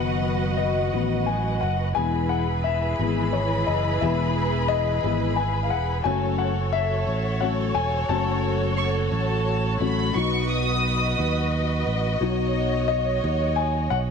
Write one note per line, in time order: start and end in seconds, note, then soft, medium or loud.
0.00 0.89 F#1 loud
0.00 0.89 D#3 soft
0.00 0.89 F#3 soft
0.00 1.93 F#3 medium
0.00 0.90 B3 medium
0.00 1.93 F#4 medium
0.00 1.92 B4 medium
0.00 1.92 D#5 medium
0.00 1.57 F#5 loud
0.00 1.92 F#5 medium
0.57 1.23 D#5 medium
0.93 1.58 A1 medium
0.93 1.24 D#3 medium
0.93 1.24 F#3 soft
0.93 1.24 B3 medium
1.26 1.59 G#5 medium
1.61 1.94 F#1 medium
1.61 1.97 F#5 medium
1.95 2.95 E1 medium
1.95 2.42 E3 medium
1.95 6.01 E3 medium
1.95 2.42 G#3 soft
1.95 2.42 B3 medium
1.95 6.02 E4 medium
1.95 6.01 G#4 medium
1.95 6.01 B4 medium
1.95 2.31 G#5 medium
1.95 6.01 B5 medium
2.29 2.62 F#5 medium
2.64 3.35 E5 medium
2.99 3.64 G#1 medium
2.99 3.30 E3 soft
2.99 3.31 G#3 soft
2.99 3.31 B3 medium
3.33 3.68 C#5 medium
3.67 4.00 F#1 medium
3.67 4.02 D#5 medium
4.01 5.00 E1 loud
4.01 5.02 E3 medium
4.01 5.03 G#3 medium
4.01 5.03 B3 medium
4.01 4.71 E5 medium
4.68 5.39 D#5 loud
5.03 5.71 G#1 medium
5.03 5.34 E3 medium
5.03 5.34 G#3 soft
5.03 5.34 B3 medium
5.36 5.65 G#5 medium
5.63 5.70 F5 medium
5.70 6.03 E1 loud
5.70 6.06 F#5 medium
6.04 7.03 F#1 loud
6.04 6.50 F#3 medium
6.04 6.51 A3 medium
6.04 6.51 C#4 medium
6.04 14.11 F#4 medium
6.04 10.11 A4 medium
6.04 10.11 C#5 medium
6.04 6.40 G#5 medium
6.38 6.74 F#5 medium
6.73 7.43 E5 loud
7.07 7.71 A1 medium
7.40 7.72 F#3 soft
7.40 7.72 A3 soft
7.40 7.72 C#4 soft
7.40 7.48 F#5 medium
7.75 8.07 E1 medium
7.75 8.10 G#5 loud
8.09 9.08 F#1 medium
8.09 9.79 F#3 medium
8.09 9.80 A3 soft
8.09 9.80 C#4 medium
8.09 9.77 A5 medium
8.78 8.93 C#6 medium
9.12 9.77 A1 medium
9.12 9.77 A5 medium
9.80 10.13 A1 medium
9.80 10.12 F#3 soft
9.80 10.12 A3 soft
9.80 10.12 C#4 medium
9.80 10.15 B5 medium
10.14 11.14 B1 loud
10.14 12.17 F#3 medium
10.14 12.17 B3 soft
10.14 12.17 D#4 medium
10.14 12.18 B4 medium
10.14 14.11 D#5 medium
10.14 10.50 C#6 loud
10.50 11.87 D#6 loud
11.19 11.83 D#2 medium
11.87 12.19 A1 medium
12.20 13.19 B1 loud
12.20 14.11 F#3 medium
12.20 14.11 B3 soft
12.20 14.11 D#4 medium
12.20 14.11 C#5 medium
12.88 13.59 D#5 loud
13.24 13.88 D#2 loud
13.56 13.92 G#5 medium
13.90 14.11 B1 medium
13.90 13.98 F#5 loud